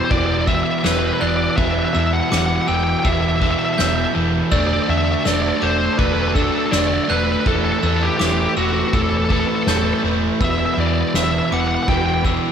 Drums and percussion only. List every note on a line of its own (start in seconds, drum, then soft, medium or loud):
0.11 kick loud
0.11 crash medium
0.48 kick medium
0.84 snare loud
0.84 crash medium
1.58 kick loud
1.58 crash medium
2.31 snare loud
2.31 crash medium
3.05 kick loud
3.05 crash medium
3.42 kick medium
3.78 snare loud
3.78 crash medium
4.52 kick loud
4.52 crash medium
5.25 snare loud
5.25 crash medium
5.99 kick loud
5.99 crash medium
6.36 kick medium
6.72 snare loud
6.72 crash medium
7.46 kick loud
7.46 crash medium
8.20 snare loud
8.20 crash medium
8.93 kick loud
8.93 crash medium
9.30 kick medium
9.67 snare loud
9.67 crash medium
10.40 kick loud
10.40 crash medium
11.14 snare loud
11.14 crash medium
11.88 kick loud
11.88 crash medium
12.25 kick medium